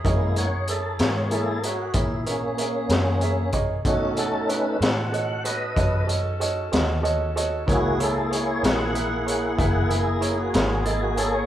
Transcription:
<<
  \new Staff \with { instrumentName = "Grand piano" } { \time 12/8 \key fis \mixolydian \tempo 4. = 63 <gis' ais' cis'' dis''>8 <gis' ais' cis'' fis''>8 <gis' ais' cis'' e''>8 <gis' ais' cis'' e''>8 <gis' ais' cis'' e''>8 <gis' ais' cis'' e''>8 <gis' ais' cis'' e''>8 <gis' ais' cis'' e''>8 <gis' ais' cis'' e''>8 <gis' ais' cis'' e''>8 <gis' ais' cis'' e''>8 <gis' ais' cis'' dis''>8 | <fis' a' cis'' dis''>8 <fis' a' cis'' fis''>8 <fis' a' cis'' fis''>8 <fis' a' cis'' fis''>8 <fis' a' cis'' dis''>8 <fis' a' cis'' fis''>8 <fis' a' cis'' dis''>8 <fis' a' cis'' dis''>8 <fis' a' cis'' dis''>8 <fis' a' cis'' dis''>8 <fis' a' cis'' dis''>8 <fis' a' cis'' dis''>8 | <e' gis' ais' cis''>8 <e' gis' ais' cis''>8 <e' gis' ais' cis''>8 <e' gis' ais' cis''>8 <e' gis' ais' e''>8 <e' gis' ais' cis''>8 <e' gis' ais' e''>8 <e' gis' ais' e''>8 <e' gis' ais' cis''>8 <e' gis' ais' cis''>8 <e' gis' ais' dis''>8 <e' gis' ais' cis''>8 | }
  \new Staff \with { instrumentName = "Tonewheel organ" } { \time 12/8 \key fis \mixolydian << { r8 cis''8 a'8 cis''8 a'8 fis'8 e'8 <ais cis'>2 r8 | fis'8 a'8 b'8 fis''4 <b' dis''>4 r2 r8 | fis'8 a'8 cis''8 fis''4 fis''4 r8 e'16 fis'16 e'16 fis'16 a'16 fis'16 a'16 cis''16 | } \\ { <gis ais e'>8 r4. <ais e' gis'>8 r2. r8 | <a cis' dis'>4. r1 r8 | <ais e' gis'>1. | } >> }
  \new Staff \with { instrumentName = "Horn section" } { \time 12/8 \key fis \mixolydian <ais e' gis'>1. | <cis' dis' a'>1. | <ais e' gis'>1. | }
  \new Staff \with { instrumentName = "Fingered electric bass" } { \clef bass \time 12/8 \key fis \mixolydian fis,4. gis,4. ais,4. fis,4. | b,4. a,4. fis,4. dis,4. | cis,4. ais,,4. fis,,4. gis,,4. | }
  \new DrumStaff \with { instrumentName = "Drums" } \drummode { \time 12/8 <hh bd>8 hh8 hh8 <hh sn>8 hh8 hh8 <hh bd>8 hh8 hh8 <hh sn>8 hh8 <hh bd>8 | <hh bd>8 hh8 hh8 <hh sn>8 hh8 hh8 <hh bd>8 hh8 hh8 <hh sn>8 hh8 hh8 | <hh bd>8 hh8 hh8 <hh sn>8 hh8 hh8 <hh bd>8 hh8 hh8 <hh sn>8 hh8 hh8 | }
>>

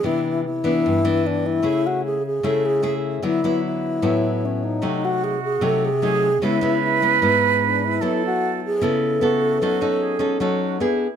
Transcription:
<<
  \new Staff \with { instrumentName = "Alto flute" } { \time 4/4 \key fis \minor \tempo 4 = 150 e'4 e'2 d'8 e'8~ | e'8 fis'8 gis'8 gis'8 a'8 gis'4 r8 | e'4 e'2 cis'8 dis'8~ | dis'8 fis'8 gis'8 gis'8 a'8 gis'4. |
e'4 e'4. r8 d'8 e'8~ | e'8 fis'4 gis'8 a'2~ | a'2. r4 | }
  \new Staff \with { instrumentName = "Flute" } { \time 4/4 \key fis \minor r1 | r1 | r1 | fis'2. gis'4 |
b'1 | a'2~ a'8 r8 fis'4 | fis'4 gis'4 fis'4 e'4 | }
  \new Staff \with { instrumentName = "Nylon-string guitar" } { \time 4/4 \key fis \minor << { <e b d'>4 r8 <e b d'>4 <e b d'>4. | <a e' gis'>4. r8 <a e' gis'>4 <a e' gis'>4 | <fis b e'>8 <fis b e'>4. <fis b e'>2 | <fis a dis'>4. r8 <fis a dis'>8 r8 <fis a dis'>8 r8 |
<gis b e'>8 <gis b e'>4 <gis b e'>8 <gis b e'>2 | <b e' a'>2 <b e' a'>4 <b e' a'>4 | <cis' dis' a'>8 <cis' dis' a'>4 <cis' dis' a'>8 <cis' dis' a'>4 <b d' gis'>8 r8 | } \\ { c2 g,2 | cis2 cis2 | d2 a,2 | bis,2 bis,2 |
cis2 gis,2 | fis2 cis2 | fis2 fis4 r4 | } >> }
>>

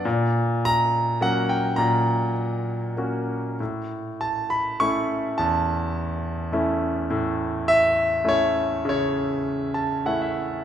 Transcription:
<<
  \new Staff \with { instrumentName = "Grand piano" } { \time 3/4 \key a \mixolydian \tempo 4 = 102 << { r4 ais''4 fis''8 g''8 | ais''4 r2 | r4 a''8 b''8 cis'''4 | a''2 r4 |
r4 e''4 cis''4 | cis''2 r4 | } \\ { r2. | r2. | r2. | r2. |
r2. | r4. a''8 fis''16 e''8. | } >> }
  \new Staff \with { instrumentName = "Grand piano" } { \time 3/4 \key a \mixolydian ais,2 <fis ais cis'>4 | ais,2 <ais cis' fis'>4 | a,2 <a cis' e'>4 | e,2 <a cis' e'>4 |
a,2 <a cis' e'>4 | cis2 <a cis' e'>4 | }
>>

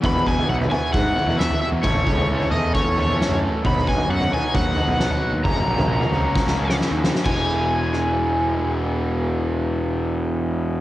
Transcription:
<<
  \new Staff \with { instrumentName = "Overdriven electric guitar" } { \time 4/4 \key e \major \tempo 4 = 133 b''8 gis''8 fis''8 gis''8 fis''4 e''8 e''8 | cis''4. dis''8 cis''4. r8 | b''8 gis''8 fis''8 gis''8 fis''2 | ais''2. r4 |
gis''1~ | gis''1 | }
  \new Staff \with { instrumentName = "Distorted electric guitar" } { \time 4/4 \key e \major <e, b, e b e' fis'>4 <e b e' fis'>8 <e b e' fis'>4 <e b e' fis'>8 <e, b, e b e' fis'>4 | <a, e a cis' a'>4 <e a cis' a'>8 <a cis' a'>4 <a cis' a'>8 <a, e a cis' a'>4 | <b, fis b dis' fis'>4 <fis b dis' fis'>8 <b dis' fis'>4 <b dis' fis'>8 <b, fis b dis' fis'>4 | <fis, cis fis ais cis' fis'>4 <fis ais cis' fis'>8 <fis ais cis' fis'>4 <fis ais cis' fis'>8 <fis, cis fis ais cis' fis'>4 |
<e, b, e gis b e'>1~ | <e, b, e gis b e'>1 | }
  \new Staff \with { instrumentName = "Picked electric bass" } { \clef bass \time 4/4 \key e \major e,4 b,,8 r8 gis,8 r16 e,8 r8 e,16 | a,,8 cis,4 e,8. e,4 fis,8 r16 | b,,4 fis,8 r8 dis,8 r16 b,,8 r8 dis,16 | fis,,8 ais,,4 cis,8. cis,4 dis,8 r16 |
e,,1~ | e,,1 | }
  \new DrumStaff \with { instrumentName = "Drums" } \drummode { \time 4/4 <bd tomfh>16 tomfh16 bd16 tomfh16 r16 tomfh16 tomfh8 <bd tomfh>8 tomfh16 tomfh16 sn16 tomfh8. | <bd tomfh>16 tomfh16 bd16 tomfh16 r16 tomfh16 tomfh8 <bd tomfh>8 tomfh16 tomfh16 sn16 tomfh8. | <bd tomfh>16 tomfh16 bd16 tomfh16 r16 tomfh16 tomfh8 <bd tomfh>8 tomfh16 tomfh16 sn16 tomfh8. | <bd tomfh>16 tomfh8 <tomfh toml>16 r16 tomfh16 tomfh8 <bd sn>16 sn8 sn16 sn8 sn16 sn16 |
<cymc bd>4 r8 ss8 r4 r4 | r4 r4 r4 r4 | }
>>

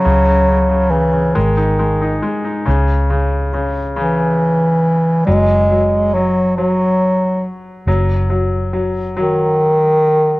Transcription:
<<
  \new Staff \with { instrumentName = "Grand piano" } { \clef bass \time 6/8 \key gis \minor \tempo 4. = 46 cis16 cis16 cis16 cis16 cis16 cis16 gis16 dis'16 gis16 dis'16 gis16 dis'16 | \key cis \dorian cis8 cis8 cis8 cis4. | fis8 fis8 fis8 fis4. | fis8 fis8 fis8 fis4. | }
  \new Staff \with { instrumentName = "Bass clarinet" } { \clef bass \time 6/8 \key gis \minor fis4 e8 dis4 r8 | \key cis \dorian r4. e4. | gis4 fis8 fis4 r8 | r4. dis4. | }
  \new Staff \with { instrumentName = "Fingered electric bass" } { \clef bass \time 6/8 \key gis \minor cis,4. gis,,4 r8 | \key cis \dorian cis,2. | fis,,2. | fis,,2. | }
>>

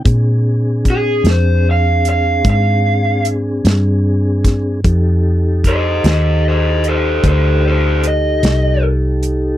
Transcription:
<<
  \new Staff \with { instrumentName = "Lead electric guitar" } { \time 12/8 \key bes \major \tempo 4. = 50 r4 aes'8 c''8 f''8 f''8 f''4 r2 | r4 <c'' ees''>8 <c'' ees''>8 <c'' ees''>8 <a' c''>8 <a' c''>8 <a' c''>8 ees''4 r4 | }
  \new Staff \with { instrumentName = "Tonewheel organ" } { \time 12/8 \key bes \major <c' d' aes'>1. | <ees' g' a'>1. | }
  \new Staff \with { instrumentName = "Fingered electric bass" } { \clef bass \time 12/8 \key bes \major bes,4. f,4. aes,4. g,4. | f,4. ees,4. d,4. c,4. | }
  \new DrumStaff \with { instrumentName = "Drums" } \drummode { \time 12/8 <hh bd>4 <hh bd>8 <hh sn>4 hh8 <hh bd>4 hh8 <hh sn>4 <hh bd sn>8 | <hh bd>4 <hh bd>8 <hh sn>4 hh8 <hh bd>4 hh8 <hh sn>4 hh8 | }
>>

